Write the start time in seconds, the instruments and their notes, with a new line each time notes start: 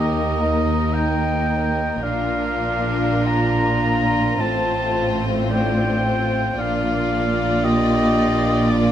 Already playing: double bass section D#2, cello section D#2, french horn section A#3 D#4, viola section A#3, violin section D#4 A#4, bassoon G4, oboe D#5, flute D#5
0.42 bassoon D#4
0.93 oboe G5, flute G5
2.03 double bass section A#1, cello section A#2, french horn section A#3 D4, bassoon D4, viola section D4, violin section F4 A#4, oboe F5, flute F5
3.26 bassoon F4, oboe A#5, flute A#5
4.40 double bass section A1, cello section A2, french horn section A3 F4, bassoon C4, viola section C4, violin section C5, oboe A5, flute A5
5.50 bassoon D4, oboe G5, flute G5
6.05 bassoon C4
6.58 double bass section A#1, cello section A#2, viola section A#3, french horn section A#3 D4, bassoon D4, violin section F4 D5, oboe F5, flute F5
7.64 bassoon G4, oboe D#5, flute D#5
8.70 bassoon F4, flute D5, oboe D5